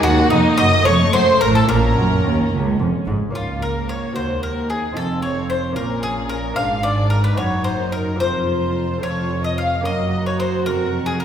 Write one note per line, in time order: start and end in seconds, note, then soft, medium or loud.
0.00 0.28 D#2 medium
0.00 0.29 D#2 medium
0.00 0.27 A#3 medium
0.00 0.81 A#3 medium
0.00 0.81 D#4 medium
0.00 0.82 F#4 medium
0.00 0.29 F#4 loud
0.00 0.31 F#4 loud
0.00 0.30 F#5 loud
0.04 0.29 D#2 loud
0.30 0.39 F1 medium
0.30 0.55 F2 medium
0.30 0.39 F2 medium
0.30 0.56 D#4 medium
0.30 0.58 D#4 loud
0.30 0.58 D#5 loud
0.58 0.85 F#1 medium
0.58 0.83 F#2 medium
0.58 0.85 F#2 medium
0.58 0.83 D#5 loud
0.58 0.85 D#5 loud
0.58 0.86 D#6 loud
0.82 1.10 A3 medium
0.82 1.11 C4 medium
0.82 1.65 F4 medium
0.82 1.11 C#5 loud
0.82 0.93 C#5 loud
0.82 1.13 C#6 loud
0.86 0.94 F1 medium
0.86 0.94 F2 medium
0.86 1.11 F2 medium
0.86 1.69 A3 medium
1.13 1.21 F#1 medium
1.13 1.38 F#2 medium
1.13 1.22 F#2 medium
1.13 1.40 C5 loud
1.13 1.39 C5 loud
1.13 1.41 C6 loud
1.40 1.68 A1 medium
1.40 1.66 A2 medium
1.40 1.68 A2 medium
1.40 1.54 A#4 medium
1.40 1.54 A#5 loud
1.55 1.69 A4 medium
1.55 1.68 A4 medium
1.55 1.61 A5 loud
1.64 3.29 A#3 medium
1.64 3.29 C#4 medium
1.64 3.30 F4 medium
1.68 1.96 A#1 loud
1.68 1.94 A#2 medium
1.68 1.96 A#2 medium
1.68 3.12 C#4 medium
1.68 2.51 A#4 medium
1.68 2.48 A#4 medium
1.68 2.50 A#5 loud
1.97 2.24 F#1 medium
1.97 2.21 F#2 medium
1.97 2.24 F#2 medium
2.24 2.51 D#2 medium
2.24 2.49 D#2 medium
2.52 2.79 C#2 medium
2.79 2.88 F1 medium
2.79 2.87 F2 medium
2.79 3.04 F2 medium
3.07 3.15 G#1 medium
3.07 3.32 G#2 medium
3.07 3.15 G#2 medium
3.30 4.12 A#3 soft
3.30 4.12 C#4 soft
3.30 4.13 F4 soft
3.35 4.13 C#2 medium
3.35 4.13 C#2 soft
3.35 4.93 A#3 soft
3.35 3.60 F4 soft
3.35 3.60 F4 medium
3.35 4.13 F5 soft
3.62 3.89 A#4 soft
3.62 3.88 A#4 medium
3.89 4.16 C#5 medium
3.89 4.15 C#5 medium
4.12 4.91 C4 soft
4.12 4.93 F#4 soft
4.12 4.41 C5 medium
4.16 4.93 D#2 soft
4.16 4.95 D#2 soft
4.16 4.44 C5 soft
4.16 4.97 F#5 soft
4.43 4.68 A#4 medium
4.43 4.70 A#4 soft
4.70 4.95 G#4 medium
4.70 4.97 G#4 soft
4.92 5.72 C4 soft
4.92 5.73 D#4 soft
4.92 5.73 F4 soft
4.92 5.04 A4 soft
4.97 5.75 F1 medium
4.97 5.73 F2 soft
4.97 5.75 F2 soft
4.97 5.75 C4 soft
4.97 5.21 A4 medium
4.97 5.76 F5 soft
5.22 5.48 C#5 medium
5.22 5.50 C#5 medium
5.50 5.75 C5 medium
5.50 5.58 C5 soft
5.72 6.51 A#3 soft
5.72 6.53 C#4 soft
5.72 6.53 F4 soft
5.76 6.55 A#1 soft
5.76 6.53 A#2 soft
5.76 6.55 A#2 soft
5.76 6.57 C#4 soft
5.76 6.01 A#4 medium
5.76 6.03 A#4 medium
5.76 6.56 F5 soft
6.03 6.28 G#4 medium
6.03 6.30 G#4 medium
6.29 6.55 A#4 medium
6.29 6.57 A#4 medium
6.52 7.32 A#3 soft
6.52 7.34 D4 soft
6.52 7.34 F4 soft
6.56 7.36 G#1 medium
6.56 7.34 G#2 soft
6.56 7.36 G#2 medium
6.56 7.36 D4 medium
6.56 6.81 F5 medium
6.56 6.84 F5 medium
6.56 7.38 G#5 soft
6.83 7.08 D5 medium
6.83 7.11 D5 medium
7.10 7.23 A#4 medium
7.10 7.24 A#4 medium
7.24 7.37 B4 medium
7.24 7.38 B4 medium
7.33 8.14 A#3 soft
7.33 8.16 D#4 soft
7.33 8.16 F#4 soft
7.37 8.18 F#1 medium
7.37 8.16 F#2 soft
7.37 8.18 F#2 medium
7.37 8.19 D#4 soft
7.37 7.63 C#5 medium
7.37 7.65 C#5 medium
7.37 8.19 A#5 medium
7.64 7.90 C5 medium
7.64 7.93 C5 medium
7.92 8.18 A#4 medium
7.92 8.20 A#4 medium
8.15 8.97 A#3 soft
8.15 8.98 C4 soft
8.15 8.99 A#4 soft
8.19 9.01 F1 medium
8.19 8.98 F2 soft
8.19 9.01 F2 soft
8.19 9.00 F4 soft
8.19 9.02 C5 medium
8.19 8.98 C5 medium
8.19 9.00 A#5 soft
8.98 9.80 A3 soft
8.98 9.81 C4 soft
8.98 9.82 C5 soft
9.02 9.84 F1 medium
9.02 9.83 F2 soft
9.02 9.81 F2 soft
9.02 9.63 F4 soft
9.02 9.43 C#5 medium
9.02 9.41 C#5 medium
9.02 9.63 A5 soft
9.44 9.58 D#5 soft
9.44 9.57 D#5 medium
9.58 9.85 F5 medium
9.58 9.83 F5 medium
9.81 10.62 A#3 soft
9.81 10.63 C#4 soft
9.81 11.25 A#4 soft
9.85 10.65 F#1 medium
9.85 10.63 F#2 soft
9.85 10.65 F#2 medium
9.85 11.25 F#4 medium
9.85 10.23 D#5 medium
9.85 10.26 D#5 medium
9.85 10.62 A#5 soft
10.26 10.39 C#5 medium
10.26 10.32 C#5 medium
10.40 10.65 C5 medium
10.40 10.66 C5 medium
10.66 11.25 F1 medium
10.66 11.25 F2 soft
10.66 11.25 F2 medium
10.66 11.04 A#4 medium
10.66 11.06 A#4 medium
10.66 11.25 C#6 soft
11.06 11.19 G#4 medium
11.06 11.20 G#4 medium
11.20 11.25 A#4 medium